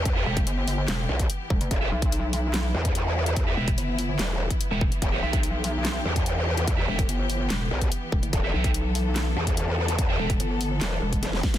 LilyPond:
<<
  \new Staff \with { instrumentName = "Distorted electric guitar" } { \time 4/4 \key e \minor \tempo 4 = 145 r16 <b g' e''>16 <b g' e''>16 r2. r16 | r16 <b g' e''>16 r2. r8 | r16 <b g' e''>16 <b g' e''>16 r2 r8 <b g' e''>16 r8 | r16 <b g' e''>16 <b g' e''>8 r2. |
r16 <b g' e''>16 <b g' e''>16 r2. r16 | r16 <b g' e''>16 <b g' e''>8 r2. | r16 <b g' e''>16 <b g' e''>16 r2. r16 | }
  \new Staff \with { instrumentName = "String section" } { \time 4/4 \key e \minor << { g'1 | e'1~ | e'1 | g'1~ |
g'1 | a'1~ | a'1 | } \\ { <e b>1~ | <e b>1~ | <e b>1~ | <e b>1~ |
<e b>1~ | <e b>1~ | <e b>1 | } >> }
  \new Staff \with { instrumentName = "Wobble bass" } { \clef bass \time 4/4 \key e \minor e,8 r2 b,,8 r4 | e,,8 r2 e,4.~ | e,8 r4. e,,8 r4. | e,,8 r2 e,4.~ |
e,8 r2 b,,8 r4 | e,,8 r2 e,4.~ | e,8 r4. e,,8 r8 e,,8 r8 | }
  \new Staff \with { instrumentName = "Wobble bass" } { \clef bass \time 4/4 \key e \minor r8 e,,8 g,,4 e,,8 r4 e,,16 fis,,16 | r8 b,,2 r4. | r8 e,,8 g,,4 r4 r16 e,,8 r16 | r8 b,,2 r4. |
r8 e,,8 g,,4 e,,8 r4 e,,16 fis,,16 | r8 b,,2 r4. | r8 e,,8 g,,4 r8 e,,8 r4 | }
  \new DrumStaff \with { instrumentName = "Drums" } \drummode { \time 4/4 <hh bd>8. <hh bd>16 hh8 hho8 <hc hh sn>8. <hh bd>16 hh8 bd16 hh16 | <hh bd>8. <hh bd>16 hh8 hho8 <hc hh sn>8. <hh bd>16 hh8. hh16 | <hh bd>8. <hh bd>16 hh8 hho8 <hc hh sn>8. <hh bd>16 hh8 bd16 hh16 | <hh bd>8. <hh bd>16 hh8 hho8 <hc hh sn>8. <hh bd>16 hh8. hh16 |
<hh bd>8. <hh bd>16 hh8 hho8 <hc hh sn>8. <hh bd>16 hh8 bd16 hh16 | <hh bd>8. <hh bd>16 hh8 hho8 <hc hh sn>8. <hh bd>16 hh8. hh16 | <hh bd>8. <hh bd>16 hh8 hho8 <hc hh sn>8. <hh bd>16 <hh sn>16 sn16 <bd sn>16 <hh sn>16 | }
>>